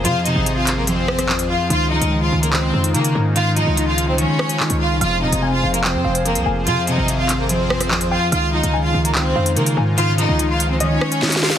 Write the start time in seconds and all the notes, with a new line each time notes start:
Already playing: F3 F4 G#4 C5
0.04 F2 C3 F4 F5, closed hi-hat
0.25 C3 D#4 D#5, closed hi-hat
0.36 G#1
0.46 F2, closed hi-hat
0.57 F4 F5
0.67 clap, closed hi-hat
0.77 A#3 A#4
0.87 F2 C4 C5, closed hi-hat
1.08 cross-stick
1.19 cross-stick, closed hi-hat
1.29 F2, clap
1.39 closed hi-hat
1.49 F4 F5
1.69 C#2 C#3 D#3 G#3 D#4 F4 F5, closed hi-hat
1.91 F3 D#4 D#5
2.01 C#2, closed hi-hat
2.12 D#3
2.22 F4 F5
2.32 C#2
2.43 A#3 A#4, closed hi-hat
2.53 D#3 C4 C5, clap
2.74 F2
2.84 closed hi-hat
2.94 C#3 D#3 A#3 A#4, closed hi-hat
3.04 closed hi-hat
3.15 G#2
3.36 D#3 F4 F5, closed hi-hat
3.56 F3 D#4 D#5, closed hi-hat
3.67 C#2
3.77 D#3, closed hi-hat
3.87 F4 F5
3.98 closed hi-hat
4.08 C4 C5
4.18 D#3 C#4 C#5, closed hi-hat
4.39 cross-stick
4.49 closed hi-hat
4.60 D#3, clap
4.70 C#2, closed hi-hat
4.80 F4 F5
4.91 C2
5.01 F1 F2 F3 F4 G#4 C5 F5, closed hi-hat
5.22 D#1 C3 D#4 D#5
5.32 F1, closed hi-hat
5.42 F2 G#5
5.53 F4 F5
5.63 F1
5.74 A#3 A#4, closed hi-hat
5.84 F2 C4 C5 G5, clap
5.95 F2
6.05 F1 F5
6.15 closed hi-hat
6.25 F2 A#3 A#4, closed hi-hat
6.35 C2, closed hi-hat
6.46 F1 G#5
6.67 F2 C3 F4 F5, closed hi-hat
6.87 C3 D#4 D#5, closed hi-hat
6.98 G#1
7.08 F2, closed hi-hat
7.19 F4 F5
7.29 clap, closed hi-hat
7.39 A#3 A#4
7.49 F2 C4 C5, closed hi-hat
7.70 cross-stick
7.81 cross-stick, closed hi-hat
7.91 F2, clap
8.01 closed hi-hat
8.11 F4 F5 G5
8.31 C#2 C#3 D#3 G#3 D#4 F4 F5, closed hi-hat
8.53 F3 D#4 D#5
8.63 C#2, closed hi-hat
8.74 D#3 G#5
8.84 F4 F5
8.94 C#2
9.04 A#3 A#4, closed hi-hat
9.15 D#3 C4 C5 G5, clap
9.36 F2 F5
9.46 closed hi-hat
9.56 C#3 D#3 A#3 A#4, closed hi-hat
9.66 closed hi-hat
9.77 G#2 G#5
9.98 D#3 F4 F5, closed hi-hat
10.18 F3 D#4 D#5, closed hi-hat
10.29 C#2
10.39 D#3, closed hi-hat
10.49 F4 F5
10.60 closed hi-hat
10.70 C4 C5
10.80 D#3 C#4 C#5 D#5, closed hi-hat
11.01 cross-stick
11.12 closed hi-hat
11.22 D#3, snare
11.29 snare, closed hi-hat
11.36 snare
11.43 F4 F5, snare
11.50 snare